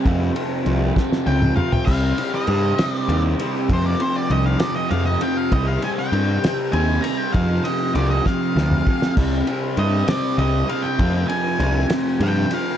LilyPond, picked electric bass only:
\new Staff \with { instrumentName = "Picked electric bass" } { \clef bass \time 6/8 \key f \dorian \tempo 4. = 66 f,8 r8 c,8 r8 des,8 r8 | c,8 r8 g,8 r8 ees,8 r8 | f,8 r8 c,8 r8 f,8 r8 | c,8 r8 g,8 r8 ees,8 r8 |
f,8 r8 c,8 r8 d,8 r8 | c,8 r8 g,8 r8 c,8 r8 | f,8 r8 c,8 r8 g,8 r8 | }